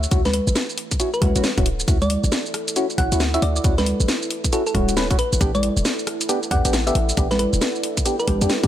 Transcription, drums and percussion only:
0.03 shaker medium
0.11 kick loud
0.11 closed hi-hat medium
0.11 shaker medium
0.25 snare medium
0.25 closed hi-hat soft
0.25 high conga medium
0.25 shaker soft
0.34 open hi-hat loud
0.47 shaker medium
0.56 snare loud
0.56 shaker medium
0.69 shaker soft
0.78 open hi-hat loud
0.91 kick medium
0.91 closed hi-hat medium
0.91 shaker medium
1.00 closed hi-hat medium
1.00 shaker medium
1.14 shaker soft
1.22 kick loud
1.22 cross-stick medium
1.22 open hi-hat loud
1.22 high conga medium
1.36 closed hi-hat medium
1.36 shaker medium
1.44 snare loud
1.44 shaker medium
1.58 kick loud
1.58 closed hi-hat medium
1.58 shaker soft
1.66 open hi-hat loud
1.80 shaker medium
1.88 kick loud
1.88 closed hi-hat medium
1.88 shaker medium
2.02 closed hi-hat soft
2.02 high conga medium
2.02 shaker soft
2.10 open hi-hat loud
2.24 shaker medium
2.32 snare loud
2.32 shaker medium
2.46 shaker soft
2.54 cross-stick medium
2.54 open hi-hat loud
2.68 closed hi-hat medium
2.68 shaker medium
2.76 closed hi-hat medium
2.76 shaker medium
2.90 shaker soft
2.98 kick loud
2.98 cross-stick medium
2.98 open hi-hat loud
3.12 closed hi-hat medium
3.12 shaker medium
3.20 snare loud
3.20 shaker medium
3.34 closed hi-hat medium
3.34 shaker soft
3.42 open hi-hat loud
3.56 shaker medium
3.64 kick loud
3.64 closed hi-hat medium
3.64 shaker medium
3.78 snare medium
3.78 closed hi-hat soft
3.78 high conga medium
3.78 shaker soft
3.86 open hi-hat loud
4.00 shaker medium
4.08 snare loud
4.08 shaker medium
4.22 shaker soft
4.31 open hi-hat loud
4.44 kick medium
4.44 closed hi-hat medium
4.44 shaker medium
4.53 closed hi-hat medium
4.53 shaker medium
4.67 shaker soft
4.75 kick loud
4.75 cross-stick medium
4.75 open hi-hat loud
4.75 high conga medium
4.89 closed hi-hat medium
4.89 shaker medium
4.97 snare loud
4.97 shaker medium
5.11 kick loud
5.11 closed hi-hat medium
5.11 shaker soft
5.19 open hi-hat loud
5.33 shaker medium
5.41 kick loud
5.41 closed hi-hat medium
5.41 shaker medium
5.55 closed hi-hat soft
5.55 high conga medium
5.55 shaker soft
5.63 open hi-hat loud
5.77 shaker medium
5.85 snare loud
5.85 shaker medium
5.99 shaker soft
6.07 cross-stick medium
6.07 open hi-hat loud
6.21 closed hi-hat medium
6.21 shaker medium
6.29 closed hi-hat medium
6.29 shaker medium
6.43 shaker soft
6.51 kick loud
6.51 cross-stick soft
6.51 open hi-hat loud
6.65 closed hi-hat medium
6.65 shaker medium
6.73 snare loud
6.73 shaker medium
6.87 closed hi-hat medium
6.87 shaker soft
6.95 open hi-hat loud
7.09 shaker medium
7.17 kick loud
7.17 closed hi-hat medium
7.17 shaker medium
7.31 snare medium
7.31 closed hi-hat soft
7.31 high conga medium
7.31 shaker soft
7.39 open hi-hat loud
7.53 shaker medium
7.61 snare loud
7.61 shaker medium
7.75 shaker soft
7.83 open hi-hat loud
7.97 kick medium
7.97 closed hi-hat medium
7.97 shaker medium
8.06 closed hi-hat medium
8.06 shaker medium
8.19 shaker soft
8.28 kick loud
8.28 cross-stick medium
8.28 open hi-hat loud
8.28 high conga medium
8.41 closed hi-hat medium
8.41 shaker medium
8.50 snare loud
8.50 shaker medium
8.64 kick loud
8.64 closed hi-hat medium
8.64 shaker soft

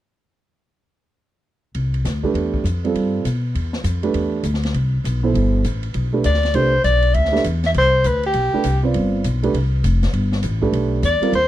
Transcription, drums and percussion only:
1.75 ride soft
1.94 ride soft
2.05 snare soft
2.05 hi-hat pedal soft
2.05 ride soft
2.24 kick soft
2.35 ride soft
2.54 kick medium
2.65 hi-hat pedal soft
2.65 ride soft
2.85 ride soft
2.95 ride soft
3.25 hi-hat pedal soft
3.25 ride soft
3.55 ride soft
3.73 snare soft
3.84 hi-hat pedal soft
3.84 ride medium
4.03 ride soft
4.14 ride soft
4.43 hi-hat pedal soft
4.43 ride soft
4.54 snare soft
4.63 snare soft
4.63 ride soft
4.74 ride soft
5.05 hi-hat pedal soft
5.05 ride medium
5.35 ride soft
5.64 hi-hat pedal soft
5.64 ride soft
5.83 ride soft
5.94 ride soft
6.24 hi-hat pedal soft
6.24 ride medium
6.34 snare soft
6.43 snare soft
6.43 ride soft
6.54 ride soft
6.84 hi-hat pedal soft
6.84 ride soft
7.02 ride soft
7.14 ride medium
7.25 snare soft
7.36 snare soft
7.44 hi-hat pedal soft
7.44 ride medium
7.64 snare soft
7.64 ride soft
7.74 ride soft
8.04 hi-hat pedal medium
8.04 ride soft
8.23 ride soft
8.33 ride soft
8.64 hi-hat pedal soft
8.64 ride medium
8.94 ride soft
9.24 hi-hat pedal soft
9.24 ride medium
9.43 ride soft
9.54 ride soft
9.84 hi-hat pedal soft
9.84 ride medium
10.03 snare soft
10.03 ride soft
10.13 ride soft
10.32 snare soft
10.43 hi-hat pedal medium
10.43 ride soft
10.63 kick soft
10.73 ride soft
11.03 hi-hat pedal medium
11.03 ride medium
11.23 ride soft
11.33 ride soft

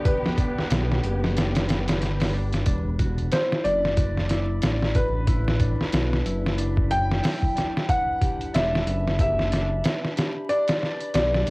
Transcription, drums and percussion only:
0.05 kick loud
0.05 closed hi-hat medium
0.26 snare medium
0.38 kick medium
0.38 closed hi-hat medium
0.59 snare soft
0.71 snare loud
0.71 closed hi-hat medium
0.92 snare soft
1.04 closed hi-hat medium
1.24 snare soft
1.37 snare loud
1.37 closed hi-hat medium
1.55 snare loud
1.55 closed hi-hat medium
1.69 snare medium
1.69 closed hi-hat medium
1.88 snare loud
1.88 closed hi-hat medium
2.02 snare soft
2.02 closed hi-hat medium
2.20 snare medium
2.20 open hi-hat medium
2.52 snare soft
2.52 closed hi-hat medium
2.66 kick loud
2.66 closed hi-hat medium
2.99 kick medium
2.99 closed hi-hat medium
3.18 closed hi-hat soft
3.31 snare loud
3.31 closed hi-hat medium
3.52 snare medium
3.65 closed hi-hat medium
3.85 snare soft
3.97 kick loud
3.97 closed hi-hat medium
4.17 snare soft
4.29 snare soft
4.29 closed hi-hat medium
4.62 snare loud
4.62 closed hi-hat medium
4.82 snare soft
4.95 kick medium
4.95 closed hi-hat medium
5.27 kick loud
5.27 closed hi-hat medium
5.48 snare medium
5.60 kick medium
5.60 closed hi-hat medium
5.81 snare soft
5.92 snare loud
5.92 closed hi-hat medium
6.13 snare soft
6.26 closed hi-hat medium
6.46 snare soft
6.58 closed hi-hat medium
6.77 kick medium
6.91 closed hi-hat medium
7.11 snare medium
7.24 snare loud
7.24 open hi-hat medium
7.42 kick medium
7.57 snare soft
7.57 closed hi-hat medium
7.77 snare medium
7.89 kick loud
7.89 closed hi-hat medium
8.21 kick medium
8.21 closed hi-hat medium
8.41 closed hi-hat soft
8.54 snare loud
8.54 closed hi-hat medium
8.75 snare medium
8.87 closed hi-hat medium
9.08 snare soft
9.19 kick loud
9.19 closed hi-hat medium
9.39 snare soft
9.52 snare medium
9.52 closed hi-hat medium
9.84 snare loud
9.84 closed hi-hat medium
10.04 snare soft
10.17 snare medium
10.17 closed hi-hat medium
10.49 closed hi-hat medium
10.68 snare loud
10.68 closed hi-hat medium
10.83 snare soft
11.00 closed hi-hat medium
11.14 snare loud
11.14 closed hi-hat medium
11.34 snare soft
11.47 closed hi-hat medium

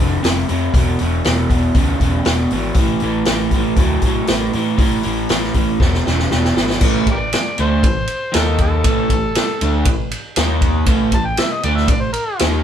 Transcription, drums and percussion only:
0.24 snare loud
0.24 open hi-hat medium
0.49 open hi-hat medium
0.74 kick loud
0.74 open hi-hat medium
0.99 open hi-hat medium
1.24 snare loud
1.24 open hi-hat medium
1.50 kick medium
1.50 open hi-hat medium
1.75 kick loud
1.75 open hi-hat medium
2.00 kick medium
2.00 open hi-hat medium
2.25 snare loud
2.25 open hi-hat medium
2.51 open hi-hat medium
2.74 kick loud
2.74 open hi-hat medium
3.00 open hi-hat soft
3.25 snare loud
3.25 open hi-hat medium
3.51 kick medium
3.51 open hi-hat soft
3.76 kick loud
3.76 open hi-hat medium
4.02 kick medium
4.02 open hi-hat medium
4.27 snare loud
4.27 open hi-hat medium
4.53 open hi-hat medium
4.78 kick loud
4.78 open hi-hat medium
5.03 open hi-hat soft
5.29 snare medium
5.29 open hi-hat medium
5.44 snare soft
5.54 kick medium
5.54 open hi-hat medium
5.80 kick loud
5.80 snare medium
5.94 snare medium
6.07 snare medium
6.19 snare medium
6.31 snare medium
6.45 snare medium
6.57 snare medium
6.70 snare medium
6.81 kick loud
6.81 crash loud
7.07 kick medium
7.07 ride medium
7.33 snare loud
7.33 ride medium
7.58 ride medium
7.83 kick loud
7.83 ride medium
8.07 ride medium
8.34 snare loud
8.34 ride medium
8.58 kick medium
8.58 ride medium
8.84 kick loud
8.84 ride loud
9.10 kick medium
9.10 ride medium
9.35 snare loud
9.35 ride medium
9.61 ride medium
9.85 kick loud
9.85 ride medium
10.11 ride medium
10.36 snare loud
10.36 ride loud
10.61 kick medium
10.61 ride medium
10.86 kick loud
10.86 ride loud
11.12 kick medium
11.12 ride medium
11.37 snare loud
11.37 ride medium
11.63 ride medium
11.77 snare soft
11.88 kick loud
11.88 ride medium
12.14 ride medium
12.39 snare loud
12.39 ride medium

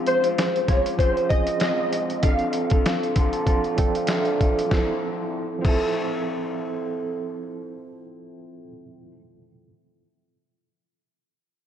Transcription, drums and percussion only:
0.06 closed hi-hat medium
0.24 closed hi-hat soft
0.38 snare medium
0.38 closed hi-hat medium
0.56 closed hi-hat soft
0.68 kick medium
0.68 snare soft
0.68 closed hi-hat medium
0.86 closed hi-hat medium
0.99 kick medium
0.99 closed hi-hat medium
1.17 closed hi-hat soft
1.30 kick medium
1.30 closed hi-hat medium
1.47 closed hi-hat medium
1.60 snare medium
1.60 closed hi-hat medium
1.93 closed hi-hat medium
2.10 closed hi-hat soft
2.23 kick loud
2.23 closed hi-hat medium
2.39 closed hi-hat soft
2.53 closed hi-hat medium
2.70 kick medium
2.70 closed hi-hat soft
2.86 snare medium
2.86 closed hi-hat medium
3.03 closed hi-hat soft
3.16 kick medium
3.16 closed hi-hat medium
3.33 closed hi-hat medium
3.47 kick medium
3.47 closed hi-hat medium
3.64 closed hi-hat soft
3.78 kick medium
3.78 closed hi-hat medium
3.95 closed hi-hat medium
4.07 snare medium
4.07 closed hi-hat medium
4.25 closed hi-hat soft
4.41 kick medium
4.41 closed hi-hat medium
4.59 closed hi-hat soft
4.71 kick medium
4.71 snare medium
5.65 kick loud
5.65 crash medium

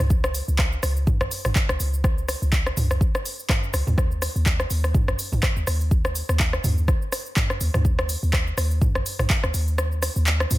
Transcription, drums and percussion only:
0.10 kick loud
0.10 shaker medium
0.24 cross-stick loud
0.24 shaker soft
0.34 open hi-hat medium
0.34 shaker loud
0.48 shaker soft
0.59 kick loud
0.59 cross-stick medium
0.59 clap loud
0.59 shaker medium
0.72 shaker soft
0.83 cross-stick medium
0.83 open hi-hat medium
0.83 shaker loud
0.97 shaker soft
1.07 kick loud
1.07 mid tom medium
1.07 shaker medium
1.21 cross-stick loud
1.21 shaker soft
1.31 open hi-hat medium
1.31 shaker loud
1.45 cross-stick medium
1.45 mid tom medium
1.45 shaker soft
1.56 kick loud
1.56 clap medium
1.56 shaker medium
1.69 cross-stick loud
1.69 shaker soft
1.80 open hi-hat medium
1.80 shaker loud
1.94 shaker soft
2.04 kick loud
2.04 cross-stick medium
2.04 shaker medium
2.18 shaker soft
2.28 cross-stick medium
2.28 open hi-hat medium
2.28 shaker loud
2.42 shaker soft
2.52 kick loud
2.52 clap loud
2.52 shaker medium
2.66 cross-stick medium
2.66 shaker soft
2.77 mid tom medium
2.77 open hi-hat medium
2.77 shaker loud
2.91 cross-stick medium
2.91 shaker soft
3.01 kick loud
3.01 shaker medium
3.15 cross-stick medium
3.15 shaker soft
3.25 open hi-hat medium
3.25 shaker loud
3.39 shaker soft
3.49 kick loud
3.49 cross-stick medium
3.49 clap loud
3.49 mid tom medium
3.49 shaker medium
3.63 shaker soft
3.74 cross-stick medium
3.74 open hi-hat medium
3.74 shaker loud
3.87 mid tom medium
3.87 shaker soft
3.98 kick loud
3.98 cross-stick medium
3.98 shaker medium
4.11 shaker soft
4.22 cross-stick medium
4.22 open hi-hat medium
4.22 shaker loud
4.36 shaker soft
4.46 kick loud
4.46 clap loud
4.46 shaker medium
4.60 cross-stick medium
4.60 shaker soft
4.70 open hi-hat medium
4.70 shaker medium
4.84 cross-stick medium
4.84 shaker soft
4.94 kick loud
4.94 mid tom medium
4.94 shaker medium
5.08 cross-stick medium
5.08 shaker soft
5.19 open hi-hat medium
5.19 shaker medium
5.33 mid tom medium
5.33 shaker soft
5.43 kick loud
5.43 cross-stick medium
5.43 clap loud
5.43 shaker medium
5.57 shaker soft
5.67 cross-stick medium
5.67 open hi-hat medium
5.67 shaker medium
5.81 shaker soft
5.91 kick loud
5.91 shaker medium
6.05 cross-stick medium
6.05 shaker soft
6.15 open hi-hat medium
6.15 shaker medium
6.29 cross-stick medium
6.29 shaker soft
6.40 kick loud
6.40 clap loud
6.40 shaker medium
6.53 cross-stick medium
6.53 shaker soft
6.64 mid tom medium
6.64 open hi-hat medium
6.64 shaker medium
6.78 shaker soft
6.88 kick loud
6.88 cross-stick medium
6.88 shaker medium
7.02 shaker soft
7.12 cross-stick medium
7.12 open hi-hat medium
7.12 shaker medium
7.26 shaker soft
7.37 kick loud
7.37 clap loud
7.37 mid tom medium
7.37 shaker medium
7.50 cross-stick medium
7.50 shaker soft
7.61 open hi-hat medium
7.61 shaker medium
7.74 cross-stick medium
7.74 mid tom medium
7.74 shaker soft
7.85 kick loud
7.85 shaker medium
7.99 cross-stick loud
7.99 shaker soft
8.09 open hi-hat loud
8.09 shaker medium
8.23 shaker soft
8.33 kick loud
8.33 cross-stick medium
8.33 clap loud
8.33 shaker medium
8.47 shaker soft
8.58 cross-stick medium
8.58 open hi-hat medium
8.58 shaker medium
8.71 shaker soft
8.81 kick loud
8.81 mid tom medium
8.81 shaker medium
8.95 cross-stick medium
8.95 shaker soft
9.06 open hi-hat medium
9.06 shaker medium
9.19 cross-stick medium
9.19 mid tom medium
9.19 shaker soft
9.30 kick loud
9.30 clap loud
9.30 shaker soft
9.44 cross-stick medium
9.44 shaker soft
9.54 open hi-hat medium
9.54 shaker medium
9.68 shaker soft
9.78 cross-stick loud
9.78 shaker medium
9.92 shaker soft
10.02 cross-stick medium
10.02 open hi-hat loud
10.02 shaker medium
10.16 shaker soft
10.27 clap loud
10.27 shaker medium
10.40 cross-stick medium
10.40 shaker soft
10.51 mid tom medium
10.51 open hi-hat medium
10.51 shaker medium

